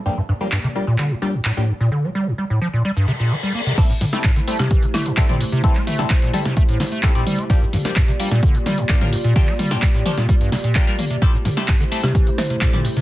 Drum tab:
CC |----------------|----------------|x---------------|----------------|
HH |----------------|----------------|x-oxxxoxxxoxxxox|x-oxxxoxxxoxxxox|
CP |----x---x---x---|----------------|----x-------x---|-x--x-------x---|
SD |----------------|----------------|---o---o--o-----|---o---o--o-----|
T2 |----------------|----------------|--o-------o--o--|--o---o-------o-|
BD |----------------|----------------|o---o---o---o---|o---o---o---o---|

CC |----------------|----------------|----------------|
HH |x-oxxxoxxxoxxxox|x-oxxxoxxxoxxxox|x-oxxxoxxxoxxxox|
CP |----x-------x---|-x--x-------x---|----x-------x---|
SD |---o---o--o-----|---o---o--o-----|---o---o--o-----|
T2 |--o-------o--o--|--o---o-------o-|--o-------o--o--|
BD |o---o---o---o---|o---o---o---o---|o---o---o---o---|